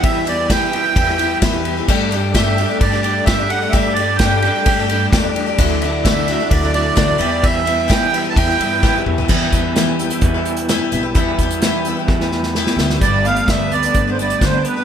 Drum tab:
CC |----------------|x---------------|----------------|----------------|
RD |x-x-x-x-x-x-x-x-|--x-x-x-x-x-x-x-|x-x-x-x-x-x-x-x-|x-x-x-x-x-x-x-x-|
HH |----------------|----------------|----------------|----------------|
SD |----o----o--o---|----o----o--o---|----o-------o---|----o----o--o---|
T2 |----------------|----------------|----------------|----------------|
FT |----------------|----------------|----------------|----------------|
BD |o---o---o---o---|o---o---o---o---|o---o---o---o---|o---o---o---o---|

CC |----------------|x---------------|----------------|----------------|
RD |x-x-x-x-x-x-----|----------------|----------------|----------------|
HH |----------------|--x-x-xxx-xxx-x-|x-xxx-x---------|x-xxx-xxx-xxx-x-|
SD |----o----o--o---|----o-------o---|----o---oooooooo|----o-------o---|
T2 |--------------o-|----------------|----------------|----------------|
FT |---------------o|----------------|----------------|----------------|
BD |o---o---o---o---|o-o-----o-------|o-o-----o-------|o---o---o---o---|